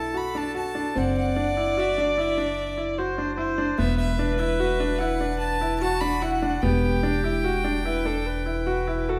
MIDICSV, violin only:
0, 0, Header, 1, 2, 480
1, 0, Start_track
1, 0, Key_signature, 1, "minor"
1, 0, Tempo, 404585
1, 1147, Time_signature, 7, 2, 24, 8
1, 8823, Tempo, 412655
1, 10866, End_track
2, 0, Start_track
2, 0, Title_t, "Violin"
2, 0, Program_c, 0, 40
2, 0, Note_on_c, 0, 81, 78
2, 201, Note_on_c, 0, 83, 79
2, 218, Note_off_c, 0, 81, 0
2, 444, Note_on_c, 0, 81, 89
2, 462, Note_off_c, 0, 83, 0
2, 661, Note_off_c, 0, 81, 0
2, 669, Note_on_c, 0, 81, 81
2, 1160, Note_on_c, 0, 78, 79
2, 1178, Note_off_c, 0, 81, 0
2, 1388, Note_off_c, 0, 78, 0
2, 1395, Note_on_c, 0, 78, 82
2, 2134, Note_on_c, 0, 76, 73
2, 2152, Note_off_c, 0, 78, 0
2, 2368, Note_on_c, 0, 74, 73
2, 2386, Note_off_c, 0, 76, 0
2, 2614, Note_on_c, 0, 76, 69
2, 2632, Note_off_c, 0, 74, 0
2, 3319, Note_off_c, 0, 76, 0
2, 4492, Note_on_c, 0, 76, 84
2, 4708, Note_off_c, 0, 76, 0
2, 4715, Note_on_c, 0, 76, 84
2, 5172, Note_off_c, 0, 76, 0
2, 5195, Note_on_c, 0, 76, 82
2, 5916, Note_on_c, 0, 78, 90
2, 5934, Note_off_c, 0, 76, 0
2, 6384, Note_off_c, 0, 78, 0
2, 6391, Note_on_c, 0, 81, 100
2, 6850, Note_off_c, 0, 81, 0
2, 6882, Note_on_c, 0, 81, 101
2, 7126, Note_on_c, 0, 83, 102
2, 7144, Note_off_c, 0, 81, 0
2, 7378, Note_on_c, 0, 78, 88
2, 7395, Note_off_c, 0, 83, 0
2, 7850, Note_on_c, 0, 79, 86
2, 7868, Note_off_c, 0, 78, 0
2, 10736, Note_off_c, 0, 79, 0
2, 10866, End_track
0, 0, End_of_file